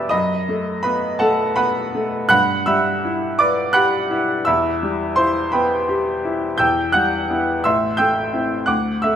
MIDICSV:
0, 0, Header, 1, 2, 480
1, 0, Start_track
1, 0, Key_signature, 1, "minor"
1, 0, Tempo, 726392
1, 81, Time_signature, 6, 3, 24, 8
1, 2960, Tempo, 702576
1, 6157, End_track
2, 0, Start_track
2, 0, Title_t, "Grand piano"
2, 0, Program_c, 0, 0
2, 0, Control_c, 0, 64, 127
2, 0, Note_on_c, 0, 55, 45
2, 0, Note_on_c, 0, 59, 45
2, 0, Note_on_c, 0, 67, 47
2, 0, Note_on_c, 0, 71, 55
2, 0, Note_on_c, 0, 74, 65
2, 0, Note_on_c, 0, 76, 68
2, 0, Note_on_c, 0, 83, 65
2, 0, Note_on_c, 0, 86, 84
2, 0, Note_on_c, 0, 88, 94
2, 62, Note_on_c, 0, 87, 82
2, 70, Note_on_c, 0, 75, 71
2, 72, Note_off_c, 0, 83, 0
2, 72, Note_off_c, 0, 88, 0
2, 72, Note_on_c, 0, 83, 63
2, 80, Note_on_c, 0, 42, 52
2, 81, Note_off_c, 0, 59, 0
2, 92, Control_c, 0, 64, 0
2, 93, Note_off_c, 0, 71, 0
2, 93, Note_off_c, 0, 74, 0
2, 94, Note_off_c, 0, 86, 0
2, 97, Note_off_c, 0, 67, 0
2, 98, Note_off_c, 0, 76, 0
2, 99, Note_off_c, 0, 55, 0
2, 195, Control_c, 0, 64, 127
2, 322, Note_on_c, 0, 57, 43
2, 531, Note_off_c, 0, 75, 0
2, 532, Note_off_c, 0, 83, 0
2, 547, Note_on_c, 0, 83, 87
2, 553, Note_off_c, 0, 87, 0
2, 554, Note_on_c, 0, 71, 62
2, 564, Note_on_c, 0, 59, 51
2, 707, Note_off_c, 0, 57, 0
2, 782, Note_off_c, 0, 71, 0
2, 786, Note_on_c, 0, 81, 77
2, 791, Note_on_c, 0, 78, 61
2, 795, Note_off_c, 0, 83, 0
2, 796, Note_on_c, 0, 69, 57
2, 802, Note_on_c, 0, 57, 48
2, 949, Note_off_c, 0, 59, 0
2, 1023, Note_off_c, 0, 78, 0
2, 1025, Note_off_c, 0, 69, 0
2, 1029, Note_on_c, 0, 83, 86
2, 1033, Note_on_c, 0, 78, 61
2, 1035, Note_on_c, 0, 71, 64
2, 1037, Note_off_c, 0, 81, 0
2, 1042, Note_on_c, 0, 59, 49
2, 1192, Note_off_c, 0, 57, 0
2, 1287, Note_on_c, 0, 57, 47
2, 1433, Note_off_c, 0, 59, 0
2, 1499, Note_off_c, 0, 78, 0
2, 1500, Note_off_c, 0, 71, 0
2, 1505, Note_off_c, 0, 42, 0
2, 1509, Note_off_c, 0, 83, 0
2, 1511, Note_on_c, 0, 90, 110
2, 1519, Note_on_c, 0, 83, 82
2, 1520, Note_on_c, 0, 78, 76
2, 1526, Note_on_c, 0, 43, 57
2, 1531, Note_off_c, 0, 57, 0
2, 1544, Control_c, 0, 64, 0
2, 1662, Control_c, 0, 64, 127
2, 1750, Note_off_c, 0, 78, 0
2, 1750, Note_off_c, 0, 83, 0
2, 1758, Note_on_c, 0, 88, 84
2, 1762, Note_on_c, 0, 83, 65
2, 1764, Note_off_c, 0, 90, 0
2, 1765, Note_on_c, 0, 76, 56
2, 1768, Note_on_c, 0, 55, 51
2, 2014, Note_on_c, 0, 64, 47
2, 2153, Note_off_c, 0, 55, 0
2, 2218, Note_off_c, 0, 83, 0
2, 2220, Note_off_c, 0, 76, 0
2, 2238, Note_on_c, 0, 86, 90
2, 2243, Note_off_c, 0, 88, 0
2, 2246, Note_on_c, 0, 74, 66
2, 2253, Note_on_c, 0, 71, 57
2, 2393, Note_off_c, 0, 64, 0
2, 2464, Note_on_c, 0, 90, 97
2, 2468, Note_off_c, 0, 74, 0
2, 2470, Note_on_c, 0, 83, 72
2, 2472, Note_on_c, 0, 78, 73
2, 2479, Note_on_c, 0, 67, 49
2, 2481, Note_off_c, 0, 86, 0
2, 2631, Note_off_c, 0, 71, 0
2, 2715, Note_on_c, 0, 64, 50
2, 2863, Note_off_c, 0, 67, 0
2, 2925, Note_off_c, 0, 83, 0
2, 2926, Note_off_c, 0, 78, 0
2, 2930, Note_off_c, 0, 43, 0
2, 2940, Note_on_c, 0, 88, 87
2, 2948, Note_off_c, 0, 90, 0
2, 2953, Note_on_c, 0, 76, 57
2, 2953, Note_on_c, 0, 83, 65
2, 2955, Note_off_c, 0, 64, 0
2, 2956, Note_on_c, 0, 40, 61
2, 2973, Control_c, 0, 64, 0
2, 3091, Control_c, 0, 64, 127
2, 3199, Note_on_c, 0, 55, 44
2, 3414, Note_off_c, 0, 76, 0
2, 3414, Note_off_c, 0, 83, 0
2, 3424, Note_on_c, 0, 84, 94
2, 3431, Note_on_c, 0, 72, 71
2, 3434, Note_off_c, 0, 88, 0
2, 3439, Note_on_c, 0, 64, 46
2, 3591, Note_off_c, 0, 55, 0
2, 3666, Note_off_c, 0, 72, 0
2, 3670, Note_on_c, 0, 83, 67
2, 3676, Note_on_c, 0, 71, 52
2, 3677, Note_on_c, 0, 79, 53
2, 3680, Note_off_c, 0, 84, 0
2, 3687, Note_on_c, 0, 59, 50
2, 3834, Note_off_c, 0, 64, 0
2, 3909, Note_off_c, 0, 71, 0
2, 3910, Note_off_c, 0, 79, 0
2, 3924, Note_off_c, 0, 83, 0
2, 3924, Note_on_c, 0, 67, 48
2, 4077, Note_off_c, 0, 59, 0
2, 4170, Note_on_c, 0, 64, 49
2, 4313, Note_off_c, 0, 67, 0
2, 4384, Note_off_c, 0, 40, 0
2, 4392, Note_on_c, 0, 91, 96
2, 4403, Note_on_c, 0, 88, 69
2, 4405, Note_on_c, 0, 79, 74
2, 4407, Note_on_c, 0, 40, 54
2, 4410, Note_off_c, 0, 64, 0
2, 4423, Control_c, 0, 64, 0
2, 4528, Control_c, 0, 64, 127
2, 4630, Note_off_c, 0, 88, 0
2, 4631, Note_off_c, 0, 79, 0
2, 4631, Note_on_c, 0, 90, 85
2, 4641, Note_on_c, 0, 78, 67
2, 4642, Note_off_c, 0, 91, 0
2, 4649, Note_on_c, 0, 55, 44
2, 4889, Note_on_c, 0, 59, 39
2, 4895, Note_on_c, 0, 64, 43
2, 5033, Note_off_c, 0, 55, 0
2, 5095, Note_off_c, 0, 78, 0
2, 5103, Note_off_c, 0, 59, 0
2, 5104, Note_off_c, 0, 40, 0
2, 5106, Note_off_c, 0, 64, 0
2, 5118, Note_off_c, 0, 90, 0
2, 5119, Note_on_c, 0, 88, 85
2, 5128, Note_on_c, 0, 84, 64
2, 5129, Note_on_c, 0, 76, 66
2, 5135, Note_on_c, 0, 33, 51
2, 5138, Control_c, 0, 64, 0
2, 5266, Control_c, 0, 64, 127
2, 5344, Note_off_c, 0, 88, 0
2, 5345, Note_off_c, 0, 76, 0
2, 5345, Note_off_c, 0, 84, 0
2, 5346, Note_on_c, 0, 91, 90
2, 5353, Note_on_c, 0, 79, 70
2, 5355, Note_on_c, 0, 88, 67
2, 5361, Note_on_c, 0, 57, 47
2, 5592, Note_on_c, 0, 60, 36
2, 5594, Note_on_c, 0, 64, 40
2, 5736, Note_off_c, 0, 57, 0
2, 5801, Note_off_c, 0, 79, 0
2, 5802, Note_off_c, 0, 88, 0
2, 5807, Note_off_c, 0, 60, 0
2, 5808, Note_off_c, 0, 64, 0
2, 5814, Note_off_c, 0, 33, 0
2, 5815, Note_on_c, 0, 90, 66
2, 5824, Note_off_c, 0, 91, 0
2, 5824, Note_on_c, 0, 78, 51
2, 5826, Note_on_c, 0, 86, 52
2, 5830, Note_on_c, 0, 38, 48
2, 5842, Control_c, 0, 64, 0
2, 5972, Control_c, 0, 64, 127
2, 6054, Note_off_c, 0, 78, 0
2, 6056, Note_off_c, 0, 86, 0
2, 6062, Note_on_c, 0, 88, 78
2, 6068, Note_off_c, 0, 90, 0
2, 6073, Note_on_c, 0, 76, 55
2, 6080, Note_on_c, 0, 57, 38
2, 6157, Note_off_c, 0, 38, 0
2, 6157, Note_off_c, 0, 57, 0
2, 6157, Note_off_c, 0, 76, 0
2, 6157, Note_off_c, 0, 88, 0
2, 6157, End_track
0, 0, End_of_file